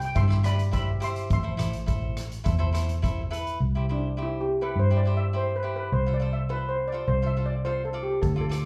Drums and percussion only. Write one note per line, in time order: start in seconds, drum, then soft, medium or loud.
0.02 closed hi-hat medium
0.16 kick loud
0.16 closed hi-hat medium
0.30 cross-stick medium
0.44 cross-stick medium
0.44 closed hi-hat medium
0.59 closed hi-hat medium
0.73 kick medium
0.73 closed hi-hat medium
1.02 closed hi-hat medium
1.16 closed hi-hat medium
1.30 kick loud
1.30 closed hi-hat medium
1.59 cross-stick medium
1.59 closed hi-hat medium
1.73 closed hi-hat medium
1.88 kick medium
1.88 closed hi-hat medium
2.17 cross-stick medium
2.17 closed hi-hat medium
2.32 closed hi-hat medium
2.46 kick loud
2.46 closed hi-hat medium
2.75 cross-stick medium
2.75 closed hi-hat medium
2.89 closed hi-hat medium
3.04 kick medium
3.04 closed hi-hat medium
3.33 closed hi-hat medium
3.47 closed hi-hat medium
8.23 kick loud
8.23 closed hi-hat medium
8.52 cross-stick medium
8.52 closed hi-hat medium